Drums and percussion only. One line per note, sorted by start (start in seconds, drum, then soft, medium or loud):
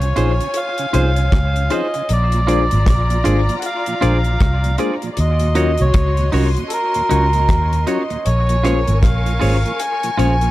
0.02 closed hi-hat soft
0.16 closed hi-hat medium
0.41 closed hi-hat soft
0.54 closed hi-hat loud
0.78 closed hi-hat medium
0.94 closed hi-hat medium
1.16 closed hi-hat soft
1.32 kick loud
1.32 cross-stick loud
1.32 closed hi-hat medium
1.56 closed hi-hat soft
1.70 closed hi-hat medium
1.94 closed hi-hat soft
2.09 closed hi-hat medium
2.32 closed hi-hat medium
2.48 closed hi-hat medium
2.71 closed hi-hat medium
2.86 kick loud
2.86 cross-stick loud
2.86 closed hi-hat loud
3.10 closed hi-hat soft
3.25 closed hi-hat medium
3.49 closed hi-hat soft
3.62 closed hi-hat loud
3.86 closed hi-hat medium
4.02 closed hi-hat medium
4.24 closed hi-hat soft
4.40 kick loud
4.40 cross-stick loud
4.40 closed hi-hat medium
4.64 closed hi-hat medium
4.78 closed hi-hat medium
5.02 closed hi-hat soft
5.17 closed hi-hat medium
5.39 closed hi-hat medium
5.55 closed hi-hat medium
5.78 closed hi-hat medium
5.94 kick loud
5.94 cross-stick loud
5.94 closed hi-hat loud
6.17 closed hi-hat soft
6.32 open hi-hat medium
6.57 closed hi-hat soft
6.70 closed hi-hat loud
6.94 closed hi-hat medium
7.11 closed hi-hat medium
7.33 closed hi-hat soft
7.49 kick loud
7.49 cross-stick loud
7.49 closed hi-hat medium
7.73 closed hi-hat soft
7.87 closed hi-hat medium
8.10 closed hi-hat soft
8.26 closed hi-hat medium
8.49 closed hi-hat medium
8.65 cross-stick medium
8.65 closed hi-hat medium
8.88 closed hi-hat soft
9.03 kick loud
9.03 cross-stick loud
9.03 closed hi-hat loud
9.26 closed hi-hat soft
9.41 open hi-hat medium
9.66 closed hi-hat soft
9.80 closed hi-hat loud
10.03 closed hi-hat medium
10.19 closed hi-hat medium
10.41 closed hi-hat soft